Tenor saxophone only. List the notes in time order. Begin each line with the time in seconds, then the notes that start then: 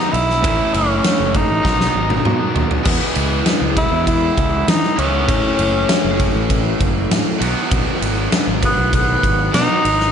Already playing: D#4
0.12 E4
0.74 C#4
1.35 D#4
3.78 E4
4.08 E4
4.70 D#4
4.99 C#4
8.65 B3
8.95 B3
9.54 D#4